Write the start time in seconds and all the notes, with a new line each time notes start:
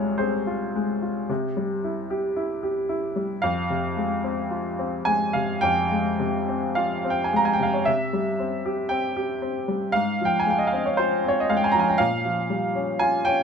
Already playing: C2 C3 G#3 F4 G#4 C#5
0.18 C4 G#4 C5
0.47 F4
0.75 G#3
1.02 F4
1.29 C3
1.57 G3
1.84 E4
2.10 G4
2.36 E4
2.63 G4
2.89 E4
3.16 G3
3.42 F2 F5
3.70 C3
3.97 G#3
4.24 C4
4.51 F4
4.79 C4
5.05 G#3 G#5
5.33 C3 F5
5.61 F2 G5
5.91 G#3
6.20 C3
6.49 C4
6.75 F4 F5
7.05 C4
7.10 G5
7.24 G#5
7.33 G#3 A#5
7.45 G#5
7.53 G5
7.59 C3 F5
7.74 C#5
7.85 C3 E5
8.13 G3
8.39 C4
8.66 G4
8.89 C4 G5
9.16 G4
9.42 C4
9.68 G3
9.92 G#2 F5
10.21 F3
10.25 G5
10.40 G#5
10.47 G#3 G5
10.58 D#5
10.67 F5
10.73 C4 D#5
10.86 C#5
10.97 F4 C5
11.24 C4
11.28 C#5
11.40 D#5
11.49 G#3 F5
11.57 G5
11.64 G#5
11.72 F3 A#5
11.79 G#5
11.89 G5
11.98 A#2 F5
12.25 F3
12.50 G3
12.75 C#4
12.99 F4 G#5
13.25 C#4 G5